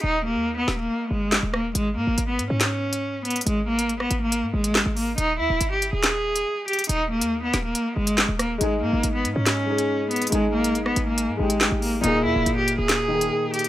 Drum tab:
HH |--------------------------------|x-------x---x---x-----x-----xxxx|x-----x-x---x---x-----x-----o---|x-------x---x---x-----x-----xxxx|
CP |------------------------x-------|----------------x---------------|------------------------x-------|----------------x---------------|
SD |------------o-----------o---r---|----------------o---------------|----------r-------------o-------|----------------o---------------|

HH |x-----x-----x---x-----x-----x---|x-------x---x---x-----x-----xxxx|x-----x-x---x---x-----x-----o---|x-------x---x---x-----x-----xxx-|
CP |------------------------x-------|----------------x---------------|------------------------x-------|----------------x---------------|
SD |------------o-----------o---r---|----------------o---------------|----------r-------------o-------|----------------o---------------|